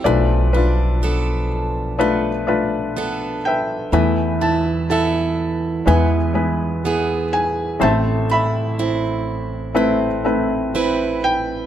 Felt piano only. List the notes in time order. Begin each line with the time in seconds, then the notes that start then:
0.04 B1 B2 A3 D4 F4 A4 B4 D5
0.53 D4 F4 B4
1.99 A3 D4 F4 B4
2.47 A3 D4 F4 B4
3.45 B4 E5 G5
3.92 E2 E3 A3 B3 E4 B4
4.42 A5
4.90 E5 A5
5.86 E2 E3 G#3 B3 E4 B4 E5 G#5
6.34 G#3 B3 E4 B4
7.33 G#5
7.80 A1 A2 A3 C4 E4 C5 E5 A5
7.84 C5
8.31 E5 B5
9.75 A3 C4 E4 B4
10.25 A3 C4 E4 B4
11.24 G5